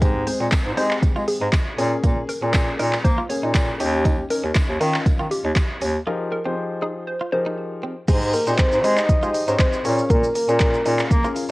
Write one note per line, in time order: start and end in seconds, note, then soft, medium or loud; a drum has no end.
0.01 0.26 G#2 loud
0.01 0.21 G#3 medium
0.01 0.12 G#3 medium
0.01 0.21 C4 medium
0.01 0.21 G4 loud
0.01 kick loud
0.01 closed hi-hat medium
0.01 tambourine medium
0.27 0.66 G#3 medium
0.27 0.66 C4 medium
0.27 0.66 G#4 medium
0.27 0.37 C5 medium
0.27 muted clean electric guitar stroke soft
0.27 open hi-hat medium
0.27 tambourine soft
0.40 0.48 A#2 medium
0.40 0.49 C4 medium
0.40 tambourine soft
0.51 kick loud
0.51 snare medium
0.51 clap loud
0.51 closed hi-hat medium
0.51 tambourine medium
0.65 0.79 G#2 medium
0.77 1.53 G#3 medium
0.77 0.94 G#3 loud
0.77 1.53 C4 medium
0.77 0.88 D#4 medium
0.77 1.53 G4 medium
0.77 1.14 C5 medium
0.77 open hi-hat medium
0.77 tambourine soft
0.91 clap medium
0.91 tambourine soft
1.03 1.08 G#3 soft
1.03 kick loud
1.03 closed hi-hat medium
1.03 tambourine soft
1.16 1.23 G#3 medium
1.16 1.25 F4 medium
1.16 tambourine soft
1.28 1.38 G#4 medium
1.28 muted clean electric guitar stroke soft
1.28 open hi-hat medium
1.28 tambourine medium
1.41 1.49 G#2 loud
1.41 1.50 D#4 medium
1.52 kick loud
1.52 snare medium
1.52 clap loud
1.52 closed hi-hat medium
1.52 tambourine medium
1.78 1.94 A#2 loud
1.78 2.28 A#3 medium
1.78 2.29 C#4 medium
1.78 1.89 C#4 medium
1.78 2.29 G#4 loud
1.78 open hi-hat medium
1.78 tambourine medium
2.03 2.20 A#2 loud
2.03 2.14 A#3 medium
2.03 kick loud
2.03 closed hi-hat medium
2.03 tambourine medium
2.29 2.39 A#4 medium
2.29 muted clean electric guitar stroke soft
2.29 open hi-hat medium
2.29 tambourine soft
2.42 2.50 A#2 medium
2.42 3.08 A#3 medium
2.42 3.08 C#4 medium
2.42 2.51 C#4 medium
2.42 3.08 G#4 medium
2.53 2.70 A#2 loud
2.53 kick loud
2.53 snare medium
2.53 clap loud
2.53 closed hi-hat medium
2.53 tambourine medium
2.79 2.95 A#2 loud
2.79 2.89 D#4 medium
2.79 2.98 A#4 medium
2.79 open hi-hat medium
2.79 tambourine soft
2.93 clap medium
2.93 tambourine soft
3.04 3.20 A#3 loud
3.04 3.23 C5 medium
3.04 kick loud
3.04 closed hi-hat medium
3.04 tambourine soft
3.18 3.27 F4 medium
3.29 3.80 A#3 medium
3.29 3.78 C#4 medium
3.29 3.80 G#4 medium
3.29 3.39 C#5 medium
3.29 muted clean electric guitar stroke soft
3.29 open hi-hat medium
3.29 tambourine medium
3.43 3.50 A#2 medium
3.43 3.52 D#4 medium
3.54 3.71 A#2 loud
3.54 kick loud
3.54 snare medium
3.54 clap loud
3.54 closed hi-hat medium
3.54 tambourine medium
3.80 4.21 D#2 loud
3.80 4.21 C#4 loud
3.80 3.90 C#4 medium
3.80 4.21 D#4 medium
3.80 4.21 G4 loud
3.80 open hi-hat medium
3.80 tambourine medium
3.93 tambourine soft
4.05 4.15 D#4 medium
4.05 kick loud
4.05 closed hi-hat medium
4.05 tambourine medium
4.30 4.69 C#4 medium
4.30 4.69 D#4 medium
4.30 4.40 A#4 medium
4.30 4.69 A#4 medium
4.30 muted clean electric guitar stroke soft
4.30 open hi-hat medium
4.30 tambourine soft
4.44 4.51 D#2 medium
4.44 4.53 C#4 medium
4.54 kick loud
4.54 snare medium
4.54 clap loud
4.54 closed hi-hat medium
4.54 tambourine medium
4.69 4.76 D#2 loud
4.80 4.97 D#3 loud
4.80 5.57 C#4 medium
4.80 5.57 D#4 medium
4.80 4.91 D#4 medium
4.80 5.57 F4 medium
4.80 5.17 A#4 medium
4.80 open hi-hat medium
4.80 tambourine soft
4.94 clap medium
4.94 tambourine soft
5.06 5.11 D#3 soft
5.06 kick loud
5.06 closed hi-hat medium
5.06 tambourine soft
5.19 5.27 D#3 medium
5.19 5.28 F4 medium
5.19 tambourine soft
5.31 5.41 G4 medium
5.31 muted clean electric guitar stroke soft
5.31 open hi-hat medium
5.31 tambourine medium
5.44 5.52 D#2 loud
5.44 5.54 D#4 medium
5.55 kick loud
5.55 snare medium
5.55 clap loud
5.55 closed hi-hat medium
5.55 tambourine medium
5.81 5.98 D#2 medium
5.81 5.92 C#4 medium
5.81 open hi-hat medium
5.81 tambourine medium
6.07 6.35 F3 medium
6.07 6.35 D#4 medium
6.07 6.17 F4 medium
6.07 6.35 G4 medium
6.07 6.35 G#4 medium
6.07 6.36 A#4 loud
6.32 6.42 A#4 medium
6.32 muted clean electric guitar stroke soft
6.45 7.11 F3 medium
6.45 6.54 C4 medium
6.45 7.11 D#4 medium
6.45 7.11 G4 medium
6.45 7.11 G#4 medium
6.45 7.11 C5 medium
6.82 6.93 D#4 medium
6.82 7.01 G#4 medium
7.07 7.26 C5 medium
7.21 7.30 F4 medium
7.32 7.90 F3 medium
7.32 7.90 D#4 medium
7.32 7.90 G4 medium
7.32 7.90 G#4 medium
7.32 7.90 A#4 medium
7.32 7.42 C5 medium
7.32 muted clean electric guitar stroke soft
7.46 7.55 D#4 medium
7.83 7.94 C4 medium
8.08 8.33 G#2 loud
8.08 8.19 G#3 medium
8.08 8.37 D#4 medium
8.08 8.37 G4 medium
8.08 8.37 G#4 medium
8.08 8.37 C5 loud
8.08 kick loud
8.08 closed hi-hat medium
8.08 crash loud
8.08 shaker medium
8.22 shaker medium
8.33 8.45 A#4 medium
8.33 muted clean electric guitar stroke soft
8.33 open hi-hat medium
8.33 shaker medium
8.47 8.54 A#2 medium
8.47 8.56 C4 medium
8.47 8.75 D#4 medium
8.47 8.75 G4 medium
8.47 8.75 G#4 medium
8.47 8.75 C5 medium
8.47 shaker medium
8.58 8.99 C5 loud
8.58 kick loud
8.58 snare medium
8.58 clap loud
8.58 closed hi-hat medium
8.58 shaker medium
8.72 8.85 G#2 loud
8.72 shaker medium
8.84 9.00 G#3 loud
8.84 9.13 D#4 medium
8.84 8.94 D#4 medium
8.84 9.13 G4 medium
8.84 9.13 G#4 medium
8.84 9.13 C5 medium
8.84 open hi-hat medium
8.84 shaker medium
8.97 9.08 D#5 loud
8.97 clap medium
8.97 shaker medium
9.09 9.15 G#3 soft
9.09 9.49 D#5 loud
9.09 kick loud
9.09 closed hi-hat medium
9.09 shaker medium
9.22 9.30 G#3 medium
9.22 9.41 D#4 medium
9.22 9.32 F4 medium
9.22 9.41 G4 medium
9.22 9.41 G#4 medium
9.22 9.41 C5 medium
9.22 shaker soft
9.35 muted clean electric guitar stroke soft
9.35 open hi-hat medium
9.35 shaker medium
9.48 9.55 G#2 medium
9.48 9.76 D#4 medium
9.48 9.57 D#4 medium
9.48 9.76 G4 medium
9.48 9.76 G#4 medium
9.48 9.76 C5 medium
9.48 9.59 C#5 loud
9.48 shaker medium
9.59 9.83 C5 loud
9.59 kick loud
9.59 snare medium
9.59 clap loud
9.59 closed hi-hat medium
9.59 shaker medium
9.73 shaker medium
9.85 10.01 A#2 loud
9.85 10.35 C#4 medium
9.85 9.95 C#4 medium
9.85 10.35 F4 medium
9.85 10.35 G#4 medium
9.85 10.35 A#4 medium
9.85 10.08 C#5 loud
9.85 open hi-hat medium
9.85 shaker medium
9.98 shaker medium
10.10 10.26 A#2 loud
10.10 10.20 A#3 medium
10.10 10.33 A#4 loud
10.10 kick loud
10.10 closed hi-hat medium
10.10 shaker medium
10.23 shaker medium
10.35 11.32 A#4 loud
10.35 muted clean electric guitar stroke soft
10.35 open hi-hat loud
10.35 shaker medium
10.48 10.56 A#2 loud
10.48 10.77 C#4 medium
10.48 10.58 C#4 medium
10.48 10.77 F4 medium
10.48 10.77 G#4 medium
10.48 10.77 A#4 medium
10.48 shaker medium
10.59 10.77 A#2 loud
10.59 kick loud
10.59 snare medium
10.59 clap loud
10.59 closed hi-hat medium
10.59 shaker medium
10.74 shaker medium
10.86 11.02 A#2 loud
10.86 11.14 C#4 medium
10.86 10.96 D#4 medium
10.86 11.14 F4 medium
10.86 11.14 G#4 medium
10.86 11.15 A#4 medium
10.86 open hi-hat medium
10.86 shaker medium
10.99 clap medium
10.99 shaker medium
11.11 11.27 A#3 loud
11.11 kick loud
11.11 closed hi-hat medium
11.11 shaker medium
11.24 11.43 C#4 medium
11.24 11.43 F4 medium
11.24 11.33 F4 medium
11.24 11.43 G#4 medium
11.24 11.43 A#4 loud
11.24 shaker soft
11.36 muted clean electric guitar stroke soft
11.36 open hi-hat medium
11.36 shaker medium